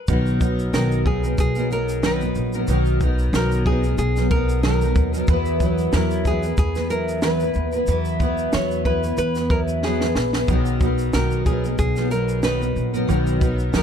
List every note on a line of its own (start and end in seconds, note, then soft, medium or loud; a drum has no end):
0.08 0.69 B1 loud
0.08 0.41 B2 medium
0.08 0.41 D#3 medium
0.08 0.39 F#3 medium
0.08 0.40 B3 medium
0.08 0.40 D#4 medium
0.08 0.41 A#4 medium
0.08 kick loud
0.08 shaker medium
0.26 shaker soft
0.41 0.72 F#3 medium
0.41 0.73 B3 medium
0.41 0.73 D#4 medium
0.41 0.73 A#4 medium
0.41 kick medium
0.41 shaker medium
0.59 shaker soft
0.73 1.34 B1 medium
0.73 1.06 B2 medium
0.73 1.06 D#3 medium
0.73 1.05 F#3 medium
0.73 1.06 B3 medium
0.73 1.06 D#4 medium
0.73 1.06 A#4 medium
0.73 1.07 A#4 medium
0.73 snare medium
0.73 shaker medium
0.92 shaker soft
1.06 1.24 F#3 medium
1.06 1.23 B3 medium
1.06 1.23 D#4 medium
1.06 1.37 G#4 medium
1.06 1.22 A#4 medium
1.06 kick medium
1.23 1.57 F#3 soft
1.23 1.56 B3 soft
1.23 1.55 D#4 medium
1.23 1.55 A#4 medium
1.23 shaker medium
1.38 2.32 B1 medium
1.38 1.72 G#4 loud
1.38 kick medium
1.38 shaker medium
1.55 1.69 F#3 soft
1.55 1.69 B3 medium
1.55 1.70 D#4 medium
1.55 1.71 A#4 medium
1.55 shaker soft
1.70 2.02 F#3 medium
1.70 2.01 B3 medium
1.70 2.02 D#4 medium
1.70 2.02 A#4 medium
1.70 2.05 A#4 loud
1.70 shaker soft
1.89 shaker medium
2.02 2.21 B2 medium
2.02 2.21 D#3 medium
2.02 2.21 F#3 medium
2.02 2.21 B3 medium
2.02 2.20 D#4 medium
2.02 2.21 A#4 medium
2.02 2.51 B4 loud
2.02 snare loud
2.02 shaker medium
2.21 2.54 F#3 soft
2.21 2.54 B3 soft
2.21 2.54 D#4 medium
2.21 shaker soft
2.35 2.66 A#1 medium
2.35 shaker soft
2.53 2.68 F#3 soft
2.53 2.68 B3 soft
2.53 2.68 D#4 medium
2.53 2.69 A#4 medium
2.53 shaker medium
2.67 3.29 B1 loud
2.67 3.01 B2 medium
2.67 3.01 D#3 medium
2.67 3.00 F#3 medium
2.67 3.01 B3 medium
2.67 3.01 D#4 medium
2.67 3.02 A#4 medium
2.67 shaker medium
2.85 shaker soft
3.01 3.33 F#3 medium
3.01 3.34 B3 medium
3.01 3.34 D#4 medium
3.01 3.35 A#4 medium
3.01 kick medium
3.01 shaker soft
3.19 shaker soft
3.33 3.94 B1 loud
3.33 3.66 B2 medium
3.33 3.66 D#3 medium
3.33 3.66 F#3 medium
3.33 3.67 B3 medium
3.33 3.67 D#4 medium
3.33 3.66 A#4 medium
3.33 3.67 A#4 medium
3.33 snare loud
3.33 shaker medium
3.52 shaker medium
3.66 3.85 F#3 medium
3.66 3.85 B3 medium
3.66 3.84 D#4 medium
3.66 3.97 G#4 medium
3.66 3.84 A#4 medium
3.66 kick medium
3.83 4.18 B3 soft
3.83 4.17 D#4 soft
3.83 4.17 A#4 medium
3.83 shaker soft
3.88 4.18 F#3 soft
3.98 4.92 B1 loud
3.98 4.30 G#4 loud
3.98 shaker medium
4.16 4.31 F#3 soft
4.16 4.32 B3 medium
4.16 4.32 D#4 soft
4.16 4.32 A#4 medium
4.16 snare soft
4.16 shaker soft
4.31 4.64 F#3 medium
4.31 4.64 B3 medium
4.31 4.65 D#4 medium
4.31 4.62 A#4 loud
4.31 4.65 A#4 medium
4.31 kick medium
4.49 shaker medium
4.63 4.82 B2 medium
4.63 4.82 D#3 medium
4.63 4.82 F#3 medium
4.63 4.82 B3 medium
4.63 4.82 D#4 medium
4.63 5.10 A#4 medium
4.63 4.82 A#4 medium
4.63 snare loud
4.63 shaker medium
4.81 5.15 F#3 soft
4.81 5.15 B3 soft
4.81 5.13 D#4 soft
4.81 5.13 A#4 medium
4.81 shaker medium
4.95 5.26 D#2 medium
4.95 kick loud
4.95 shaker soft
5.14 5.28 F#3 medium
5.14 5.29 B3 soft
5.14 5.29 D#4 soft
5.14 5.28 A#4 medium
5.14 shaker medium
5.27 5.89 E2 loud
5.27 5.61 E3 medium
5.27 5.60 F#3 medium
5.27 5.61 B3 medium
5.27 5.62 E4 medium
5.27 5.62 B4 loud
5.27 kick loud
5.27 shaker medium
5.45 shaker soft
5.60 5.94 F#3 medium
5.60 5.94 B3 medium
5.60 5.94 E4 medium
5.60 5.95 B4 medium
5.60 kick medium
5.60 shaker medium
5.78 shaker soft
5.93 6.54 E2 loud
5.93 6.27 E3 medium
5.93 6.25 F#3 medium
5.93 6.26 B3 medium
5.93 6.26 E4 medium
5.93 6.27 A#4 medium
5.93 snare loud
5.93 shaker medium
6.11 shaker soft
6.25 6.44 F#3 medium
6.25 6.44 B3 medium
6.25 6.44 E4 medium
6.25 6.58 G#4 medium
6.25 6.42 B4 medium
6.25 kick medium
6.25 shaker soft
6.43 6.76 B3 soft
6.43 6.76 E4 soft
6.43 6.75 B4 soft
6.43 shaker soft
6.57 7.52 E2 medium
6.57 6.90 G#4 loud
6.57 kick loud
6.57 shaker medium
6.75 6.90 B3 soft
6.75 6.90 E4 medium
6.75 6.91 B4 medium
6.75 snare soft
6.75 shaker soft
6.90 7.22 F#3 medium
6.90 7.23 B3 medium
6.90 7.23 E4 medium
6.90 7.21 A#4 medium
6.90 shaker medium
7.08 shaker medium
7.22 7.41 E3 medium
7.22 7.41 F#3 medium
7.22 7.41 B3 medium
7.22 7.41 E4 medium
7.22 7.70 B4 medium
7.22 7.40 B4 medium
7.22 snare loud
7.22 shaker medium
7.40 7.74 B3 soft
7.40 7.73 E4 soft
7.40 7.72 B4 medium
7.40 shaker soft
7.54 7.86 D#2 medium
7.54 shaker soft
7.72 7.87 B3 soft
7.72 7.88 E4 medium
7.72 7.88 B4 medium
7.72 shaker medium
7.87 8.49 E2 medium
7.87 8.21 E3 medium
7.87 8.19 F#3 medium
7.87 8.20 B3 medium
7.87 8.21 E4 medium
7.87 8.21 B4 medium
7.87 shaker medium
8.05 shaker soft
8.20 8.52 F#3 medium
8.20 8.52 B3 medium
8.20 8.53 E4 medium
8.20 8.53 B4 medium
8.20 kick medium
8.20 shaker soft
8.38 shaker soft
8.53 9.14 E2 loud
8.53 8.86 E3 medium
8.53 8.83 F#3 medium
8.53 8.84 B3 medium
8.53 8.85 E4 medium
8.53 8.86 B4 medium
8.53 8.85 C#5 medium
8.53 snare loud
8.53 shaker medium
8.71 shaker soft
8.85 9.03 F#3 medium
8.85 9.04 B3 medium
8.85 9.03 E4 medium
8.85 9.16 B4 medium
8.85 9.03 B4 medium
8.85 kick medium
9.03 9.37 B3 soft
9.03 9.36 E4 soft
9.03 9.35 B4 soft
9.03 shaker soft
9.17 10.12 E2 medium
9.17 9.50 B4 loud
9.17 shaker medium
9.35 9.50 B3 soft
9.35 9.51 E4 medium
9.35 9.51 B4 medium
9.35 snare soft
9.35 shaker soft
9.50 9.83 F#3 medium
9.50 9.83 B3 medium
9.50 9.84 E4 medium
9.50 9.60 A#4 medium
9.50 kick loud
9.68 shaker medium
9.83 10.01 E3 medium
9.83 10.02 F#3 medium
9.83 10.02 B3 medium
9.83 10.01 E4 medium
9.83 10.31 G#4 medium
9.83 10.00 B4 medium
9.83 snare medium
10.01 10.35 B3 soft
10.01 10.34 E4 soft
10.01 10.33 B4 soft
10.01 snare medium
10.15 10.45 A#1 medium
10.15 snare medium
10.33 10.49 B3 soft
10.33 10.49 E4 soft
10.33 10.49 B4 medium
10.33 snare medium
10.48 11.09 B1 medium
10.48 10.81 B2 medium
10.48 10.81 D#3 medium
10.48 10.80 F#3 medium
10.48 10.81 B3 medium
10.48 10.82 D#4 medium
10.48 10.82 A#4 medium
10.48 kick loud
10.48 shaker medium
10.66 shaker soft
10.81 11.14 F#3 medium
10.81 11.14 B3 medium
10.81 11.14 D#4 medium
10.81 11.15 A#4 medium
10.81 kick medium
10.81 shaker soft
10.98 shaker soft
11.13 11.74 B1 medium
11.13 11.47 B2 medium
11.13 11.47 D#3 medium
11.13 11.47 F#3 medium
11.13 11.47 B3 medium
11.13 11.47 D#4 medium
11.13 11.46 A#4 medium
11.13 11.47 A#4 medium
11.13 snare loud
11.13 shaker medium
11.31 shaker soft
11.46 11.65 F#3 medium
11.46 11.65 B3 medium
11.46 11.64 D#4 medium
11.46 11.77 G#4 medium
11.46 11.63 A#4 medium
11.46 kick medium
11.46 shaker soft
11.64 11.98 F#3 soft
11.64 11.97 B3 soft
11.64 11.97 D#4 soft
11.64 11.95 A#4 soft
11.64 shaker soft
11.78 12.72 B1 medium
11.78 12.11 G#4 loud
11.78 kick medium
11.78 shaker medium
11.96 12.09 F#3 medium
11.96 12.10 B3 soft
11.96 12.11 D#4 medium
11.96 12.11 A#4 medium
11.96 snare soft
11.96 shaker medium
12.10 12.42 F#3 medium
12.10 12.42 B3 medium
12.10 12.42 D#4 medium
12.10 12.44 A#4 medium
12.10 12.42 A#4 medium
12.10 shaker soft
12.29 shaker medium
12.42 12.61 B2 medium
12.42 12.61 D#3 medium
12.42 12.61 F#3 medium
12.42 12.60 B3 medium
12.42 12.60 D#4 medium
12.42 12.61 A#4 medium
12.42 12.91 B4 medium
12.42 snare loud
12.42 shaker medium
12.61 12.94 F#3 soft
12.61 12.93 B3 soft
12.61 12.93 D#4 soft
12.61 shaker soft
12.76 13.06 A#1 medium
12.76 shaker soft
12.93 13.07 F#3 soft
12.93 13.07 B3 medium
12.93 13.08 D#4 medium
12.93 13.08 A#4 medium
12.93 shaker medium
13.07 13.70 B1 loud
13.07 13.41 B2 medium
13.07 13.41 D#3 loud
13.07 13.39 F#3 medium
13.07 13.40 B3 medium
13.07 13.40 D#4 medium
13.07 13.41 A#4 medium
13.07 shaker medium
13.27 shaker medium
13.41 13.72 F#3 medium
13.41 13.72 B3 medium
13.41 13.73 D#4 medium
13.41 13.72 A#4 medium
13.41 kick medium
13.41 shaker soft
13.59 shaker soft
13.72 13.83 B1 medium
13.72 13.83 B2 medium
13.72 13.83 D#3 medium
13.72 13.83 F#3 medium
13.72 13.83 B3 medium
13.72 13.83 D#4 medium
13.72 13.83 A#4 medium
13.72 snare loud
13.72 shaker medium
13.76 13.83 A#4 medium